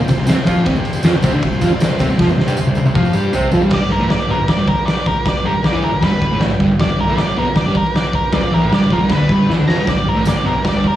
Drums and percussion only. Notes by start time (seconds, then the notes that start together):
0.08 kick, ride, tambourine
0.27 snare, ride, tambourine
0.46 kick, ride, tambourine
0.57 tambourine
0.66 kick, ride, tambourine
0.76 tambourine
0.85 ride, tambourine
0.93 tambourine
1.03 snare, ride, tambourine
1.22 kick, ride, tambourine
1.32 tambourine
1.42 kick, ride, tambourine
1.52 tambourine
1.61 kick, ride, tambourine
1.80 snare, ride, tambourine
1.99 kick, ride, tambourine
2.10 tambourine
2.18 kick, snare, tambourine
2.29 tambourine
2.39 snare
2.48 tambourine
2.57 tambourine
2.67 tambourine
2.75 high tom, tambourine
2.85 tambourine
2.95 kick, mid tom, tambourine
3.05 tambourine
3.13 tambourine
3.33 floor tom, tambourine
3.43 tambourine
3.51 floor tom, tambourine
3.61 tambourine
3.70 kick, snare, floor tom, crash
3.90 floor tom
4.09 snare, floor tom
4.29 floor tom
4.48 kick, snare, floor tom
4.68 kick, floor tom
4.87 snare, floor tom
5.06 kick, floor tom
5.26 kick, snare, floor tom
5.45 floor tom
5.63 snare, floor tom
5.83 floor tom
6.02 kick, snare, floor tom
6.22 kick, floor tom
6.40 snare, floor tom
6.60 kick, floor tom
6.79 kick, snare, floor tom
6.98 floor tom
7.17 snare, floor tom
7.37 floor tom
7.55 kick, snare, floor tom
7.75 kick, floor tom
7.95 snare, floor tom
8.13 kick, floor tom
8.32 kick, snare, floor tom
8.52 floor tom
8.72 snare, floor tom
8.90 kick, floor tom
9.09 kick, snare, floor tom
9.29 kick, floor tom
9.50 snare
9.69 snare
9.87 kick, snare, floor tom
10.07 floor tom
10.25 snare, floor tom, tambourine
10.46 floor tom
10.64 kick, snare, floor tom
10.84 kick, floor tom